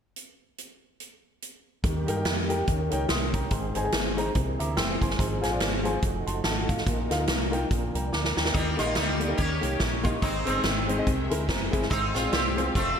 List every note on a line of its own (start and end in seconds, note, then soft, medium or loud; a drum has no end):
0.16 closed hi-hat medium
0.58 closed hi-hat medium
1.00 closed hi-hat soft
1.42 closed hi-hat medium
1.84 2.04 D#2 medium
1.84 4.32 D#3 medium
1.84 2.46 D#3 medium
1.84 2.67 G3 medium
1.84 3.49 A#3 medium
1.84 3.50 G4 medium
1.84 kick loud
1.84 closed hi-hat medium
2.07 2.23 G2 medium
2.07 2.13 D#4 medium
2.07 2.14 G4 medium
2.07 2.14 A#4 medium
2.07 2.14 G5 medium
2.07 closed hi-hat medium
2.15 2.28 D#4 medium
2.15 2.29 G4 medium
2.15 2.29 A#4 medium
2.15 2.29 G5 medium
2.25 2.61 F2 medium
2.25 snare loud
2.25 closed hi-hat medium
2.48 2.60 D#4 medium
2.48 2.61 G4 medium
2.48 2.61 A#4 medium
2.48 2.61 G5 medium
2.48 closed hi-hat medium
2.67 2.88 D#2 medium
2.67 3.30 D#3 medium
2.67 3.51 C#4 medium
2.67 kick medium
2.67 closed hi-hat medium
2.91 3.07 C#2 medium
2.91 3.02 D#4 medium
2.91 3.03 A#4 medium
2.91 3.03 C#5 medium
2.91 3.03 G5 medium
2.91 closed hi-hat medium
3.09 3.45 C2 medium
3.09 3.32 C6 medium
3.09 3.32 D#6 medium
3.09 snare medium
3.09 closed hi-hat medium
3.33 3.73 G5 soft
3.33 3.73 A#5 medium
3.33 kick medium
3.33 closed hi-hat medium
3.51 3.72 G#1 medium
3.51 4.13 G#2 medium
3.51 4.34 G#3 medium
3.51 6.00 C4 medium
3.51 4.34 G#4 medium
3.51 kick medium
3.51 closed hi-hat medium
3.75 3.90 G1 medium
3.75 3.81 D#4 medium
3.75 3.81 G#4 medium
3.75 3.81 C5 medium
3.75 3.82 G#5 medium
3.75 closed hi-hat medium
3.83 3.96 D#4 medium
3.83 3.96 G#4 medium
3.83 3.97 C5 medium
3.83 3.97 G#5 medium
3.92 4.29 G#1 medium
3.92 snare loud
3.92 closed hi-hat medium
4.17 4.28 D#4 medium
4.17 4.29 G#4 medium
4.17 4.29 C5 medium
4.17 4.29 A#5 medium
4.17 closed hi-hat medium
4.34 4.56 C2 medium
4.34 4.97 C3 medium
4.34 5.18 E3 medium
4.34 5.18 A#3 medium
4.34 5.17 G#4 medium
4.34 kick medium
4.34 closed hi-hat medium
4.59 4.79 D2 medium
4.59 4.76 E5 medium
4.59 4.77 A#5 medium
4.59 4.76 D6 medium
4.59 closed hi-hat medium
4.77 4.98 F#1 medium
4.77 4.99 G5 medium
4.77 5.00 C6 medium
4.77 5.00 E6 medium
4.77 snare medium
4.77 closed hi-hat medium
5.01 5.16 G1 medium
5.01 5.41 G#5 medium
5.01 5.18 C6 medium
5.01 kick medium
5.01 closed hi-hat medium
5.10 snare soft
5.19 5.39 G#1 loud
5.19 5.81 G#2 medium
5.19 6.02 F3 medium
5.19 6.02 G#3 medium
5.19 6.02 G#4 medium
5.19 kick loud
5.19 closed hi-hat medium
5.41 5.58 A#1 medium
5.41 5.48 F4 medium
5.41 5.48 G#4 medium
5.41 5.48 C5 medium
5.41 5.49 G#5 medium
5.41 snare soft
5.41 closed hi-hat medium
5.51 5.64 F4 medium
5.51 5.64 G#4 medium
5.51 5.64 C5 medium
5.51 5.65 D5 medium
5.60 5.96 G#1 medium
5.60 snare loud
5.60 closed hi-hat medium
5.83 5.96 F4 medium
5.83 5.96 G#4 medium
5.83 5.96 C5 medium
5.83 5.97 G#5 medium
5.83 closed hi-hat medium
6.02 6.23 F1 medium
6.02 8.52 F3 medium
6.02 6.86 A3 medium
6.02 7.69 D#4 medium
6.02 6.86 F#4 medium
6.02 kick medium
6.02 closed hi-hat medium
6.26 6.42 F#1 medium
6.26 6.43 A5 medium
6.26 6.44 C6 medium
6.26 closed hi-hat medium
6.44 6.65 G#1 medium
6.44 6.68 F#5 medium
6.44 6.67 A5 medium
6.44 snare medium
6.44 closed hi-hat medium
6.69 6.84 A1 medium
6.69 7.08 F5 medium
6.69 kick medium
6.69 closed hi-hat medium
6.78 snare soft
6.87 7.07 A#1 medium
6.87 7.49 A#2 medium
6.87 8.54 A#3 medium
6.87 8.53 A#4 medium
6.87 kick loud
6.87 closed hi-hat medium
7.10 7.26 D2 medium
7.10 7.16 D#4 medium
7.10 7.16 F4 medium
7.10 7.16 A#4 medium
7.10 7.17 F5 medium
7.10 snare soft
7.10 closed hi-hat medium
7.18 7.31 D#4 medium
7.18 7.31 F4 medium
7.18 7.32 A#4 medium
7.18 7.32 F5 medium
7.27 7.64 C2 medium
7.27 snare loud
7.27 closed hi-hat medium
7.51 7.63 D#4 medium
7.51 7.63 F4 medium
7.51 7.64 A#4 medium
7.51 7.64 G5 medium
7.51 closed hi-hat medium
7.70 7.91 A#1 medium
7.70 8.32 A#2 medium
7.70 8.54 D4 medium
7.70 kick medium
7.70 closed hi-hat medium
7.95 8.10 C2 medium
7.95 8.12 G5 soft
7.95 8.12 A#5 medium
7.95 closed hi-hat medium
8.12 8.33 D2 medium
8.12 8.35 A#5 medium
8.12 8.35 D6 medium
8.12 snare soft
8.25 snare medium
8.37 8.52 D#2 medium
8.37 8.77 G5 medium
8.37 8.77 A#5 medium
8.37 snare medium
8.45 snare medium
8.54 8.75 D#2 medium
8.54 9.17 D#3 medium
8.54 8.96 G3 medium
8.54 8.96 A#3 medium
8.54 11.04 D#4 medium
8.54 8.78 D#4 medium
8.54 10.21 G4 medium
8.54 10.21 A#4 medium
8.54 9.38 D#5 medium
8.54 kick loud
8.54 closed hi-hat medium
8.77 8.94 A#1 medium
8.77 8.83 A#3 medium
8.77 8.84 D#4 medium
8.77 8.95 F4 medium
8.77 8.84 G4 medium
8.77 8.85 D#5 medium
8.77 snare soft
8.77 closed hi-hat medium
8.85 8.99 A#3 medium
8.85 8.99 D#4 medium
8.85 8.99 G4 soft
8.85 9.00 D#5 medium
8.95 9.32 D2 medium
8.95 9.36 G3 medium
8.95 9.36 A#3 medium
8.95 9.37 D#4 medium
8.95 snare loud
8.95 closed hi-hat medium
9.19 9.26 A#3 medium
9.19 9.26 D#4 medium
9.19 9.27 G4 medium
9.19 9.27 D5 medium
9.19 closed hi-hat medium
9.28 9.38 A#3 medium
9.28 9.38 D#4 medium
9.28 9.39 G4 medium
9.28 9.39 D#5 medium
9.37 9.59 D#2 medium
9.37 10.01 D#3 medium
9.37 10.19 A#3 medium
9.37 10.19 C#4 medium
9.37 10.03 G4 loud
9.37 10.21 C#5 medium
9.37 kick medium
9.37 closed hi-hat medium
9.61 9.78 C2 medium
9.61 9.73 A#3 medium
9.61 9.73 D#4 medium
9.61 9.74 G4 medium
9.61 9.74 C#5 medium
9.61 closed hi-hat medium
9.80 10.16 A#1 medium
9.80 kick medium
9.80 snare medium
9.80 closed hi-hat medium
10.03 10.15 A#3 medium
10.03 10.16 D#4 medium
10.03 10.09 F4 medium
10.03 10.16 G4 medium
10.03 10.17 D#5 medium
10.03 kick medium
10.03 closed hi-hat medium
10.21 10.43 G#1 loud
10.21 10.85 G#2 medium
10.21 12.72 G#3 medium
10.21 10.46 G#3 medium
10.21 10.44 C4 medium
10.21 10.47 D#4 medium
10.21 12.72 C5 medium
10.21 11.05 D#5 medium
10.21 kick loud
10.21 closed hi-hat medium
10.45 10.62 G1 medium
10.45 11.27 D#3 medium
10.45 10.52 G#3 medium
10.45 11.27 G#3 medium
10.45 11.26 C4 medium
10.45 10.52 C4 medium
10.45 10.52 D#4 medium
10.45 10.52 C5 medium
10.45 closed hi-hat medium
10.55 10.68 G#3 medium
10.55 10.68 C4 medium
10.55 10.68 D#4 medium
10.55 10.69 C5 medium
10.63 11.00 G#1 medium
10.63 snare loud
10.63 closed hi-hat medium
10.87 10.94 G#3 medium
10.87 10.94 C4 medium
10.87 10.94 D#4 medium
10.87 10.94 C5 medium
10.87 closed hi-hat medium
10.97 11.06 G#3 medium
10.97 11.07 C4 medium
10.97 11.07 D#4 medium
10.97 11.07 D#5 medium
11.06 11.27 C2 medium
11.06 11.69 C3 medium
11.06 11.90 A#4 medium
11.06 11.90 E5 medium
11.06 kick medium
11.06 closed hi-hat medium
11.29 11.50 D2 medium
11.29 11.42 G#3 medium
11.29 11.42 C4 medium
11.29 11.42 E4 medium
11.29 11.43 A#4 medium
11.29 closed hi-hat medium
11.48 11.69 F#1 medium
11.48 11.88 A#5 medium
11.48 kick medium
11.48 snare medium
11.48 closed hi-hat medium
11.71 11.89 G1 medium
11.71 11.83 G#3 medium
11.71 11.84 C4 medium
11.71 11.84 E4 medium
11.71 11.84 G#4 medium
11.71 kick medium
11.71 closed hi-hat medium
11.82 snare soft
11.90 12.12 G#1 medium
11.90 12.53 G#2 medium
11.90 12.71 G#3 medium
11.90 12.31 C4 medium
11.90 12.14 D#4 loud
11.90 12.74 F4 medium
11.90 13.00 F5 medium
11.90 kick loud
11.90 closed hi-hat medium
12.14 12.30 A#1 medium
12.14 12.20 G#3 medium
12.14 12.21 C4 medium
12.14 12.31 F4 medium
12.14 12.21 F4 medium
12.14 12.21 C5 medium
12.14 snare soft
12.14 closed hi-hat medium
12.23 12.36 G#3 medium
12.23 12.36 C4 medium
12.23 12.36 F4 medium
12.23 12.37 D5 medium
12.32 12.69 C2 medium
12.32 12.72 C4 medium
12.32 12.76 G4 medium
12.32 snare loud
12.32 closed hi-hat medium
12.55 12.62 G#3 medium
12.55 12.62 C4 medium
12.55 12.63 F4 medium
12.55 12.63 C5 medium
12.55 closed hi-hat medium
12.64 12.74 G#3 medium
12.64 12.74 C4 medium
12.64 12.75 F4 medium
12.64 12.75 C5 medium
12.74 12.96 F1 medium
12.74 13.00 F#3 medium
12.74 13.00 A3 medium
12.74 13.00 C4 medium
12.74 13.00 F4 medium
12.74 13.00 A4 medium
12.74 13.00 D#5 medium
12.74 kick medium
12.74 closed hi-hat medium